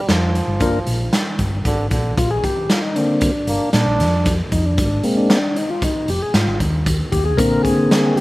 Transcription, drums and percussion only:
0.09 snare, closed hi-hat
0.35 closed hi-hat
0.60 kick, closed hi-hat
0.87 closed hi-hat
1.13 snare, closed hi-hat
1.39 kick, closed hi-hat
1.65 kick, closed hi-hat
1.91 kick, closed hi-hat
2.17 kick, closed hi-hat
2.44 kick, closed hi-hat
2.70 snare, closed hi-hat
2.96 closed hi-hat
3.21 kick, closed hi-hat
3.47 closed hi-hat
3.73 snare, closed hi-hat
4.00 snare, closed hi-hat
4.25 kick, snare, closed hi-hat
4.52 kick, closed hi-hat
4.78 kick, closed hi-hat
5.03 closed hi-hat
5.30 snare, closed hi-hat
5.56 closed hi-hat
5.82 kick, closed hi-hat
6.08 closed hi-hat
6.34 snare, closed hi-hat
6.60 kick, closed hi-hat
6.86 kick, closed hi-hat
7.12 kick, closed hi-hat
7.38 kick, closed hi-hat
7.65 kick, closed hi-hat
7.91 snare, closed hi-hat
8.17 closed hi-hat

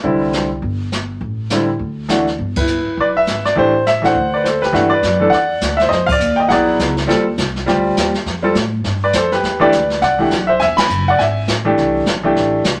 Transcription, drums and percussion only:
0.04 brush sweep, kick
0.33 snare, hi-hat pedal
0.63 brush sweep, kick
0.92 snare, hi-hat pedal
1.21 brush sweep, kick
1.50 snare, hi-hat pedal
1.80 brush sweep, kick
2.09 snare, hi-hat pedal
2.27 snare
2.39 brush sweep, kick
2.56 kick, ride
2.67 hi-hat pedal
2.97 brush sweep, kick
3.27 snare, hi-hat pedal
3.45 snare
3.57 brush sweep, kick
3.86 snare, hi-hat pedal
4.04 snare
4.15 brush sweep, kick
4.45 snare, hi-hat pedal
4.63 snare
4.74 brush sweep, kick, snare
5.03 kick, snare, hi-hat pedal
5.32 brush sweep, kick, snare
5.61 kick, snare, hi-hat pedal
5.79 snare
5.91 brush sweep, kick, snare
6.09 kick, crash
6.20 hi-hat pedal
6.50 brush sweep, kick, snare
6.79 kick, snare, hi-hat pedal
6.97 snare
7.09 brush sweep, kick, snare
7.38 kick, snare, hi-hat pedal
7.56 snare
7.67 brush sweep, kick, snare
7.97 kick, snare, hi-hat pedal
8.14 snare
8.26 brush sweep, kick, snare
8.55 kick, snare, hi-hat pedal
8.84 brush sweep, kick, snare
9.13 kick, snare, hi-hat pedal
9.32 snare
9.43 brush sweep, kick, snare
9.72 kick, snare, hi-hat pedal
9.90 snare
10.02 brush sweep, kick, snare
10.31 kick, snare, hi-hat pedal
10.60 brush sweep, kick, snare
10.78 snare, ride
10.89 hi-hat pedal
11.19 brush sweep, kick, snare
11.48 kick, snare, hi-hat pedal
11.77 brush sweep, kick, snare
12.06 kick, snare, hi-hat pedal
12.36 brush sweep, kick, snare
12.64 kick, snare, hi-hat pedal

